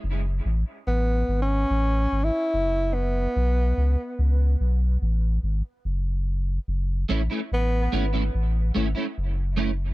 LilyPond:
<<
  \new Staff \with { instrumentName = "Clean electric guitar" } { \time 4/4 \key fis \minor \tempo 4 = 72 r1 | r1 | r8 <a cis' e'>16 <a cis' e'>16 r8 <a cis' e'>16 <a cis' e'>16 r8 <a cis' e'>16 <a cis' e'>16 r8 <a cis' e'>16 r16 | }
  \new Staff \with { instrumentName = "Tenor saxophone" } { \time 4/4 \key fis \minor r4 \tuplet 3/2 { b4 cis'8~ cis'4 e'8~ } e'8 b8~ | b4. r2 r8 | r4 b8 r2 r8 | }
  \new Staff \with { instrumentName = "Sub bass" } { \clef bass \time 4/4 \key fis \minor fis,,8 a,,16 r16 a,,8 gis,,8 a,,8 gis,,16 r16 fis,,4 | b,,8 cis,16 r16 cis,8 b,,8 a,,8 gis,,16 r16 fis,,4 | fis,,8 a,,16 r16 a,,8 gis,,8 a,,8 gis,,16 r16 fis,,4 | }
>>